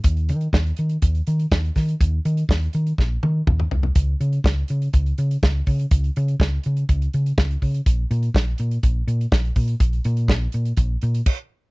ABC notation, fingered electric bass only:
X:1
M:4/4
L:1/8
Q:1/4=123
K:D#m
V:1 name="Fingered electric bass" clef=bass
D,, D, D,, D, D,, D, D,, D, | D,, D, D,, D, A,,, D, D,, ^B,,, | C,, C, C,, C, C,, C, C,, C, | C,, C, C,, C, C,, C, C,, C, |
A,,, A,, A,,, A,, A,,, A,, A,,, A,, | A,,, A,, A,,, A,, A,,, A,, z2 |]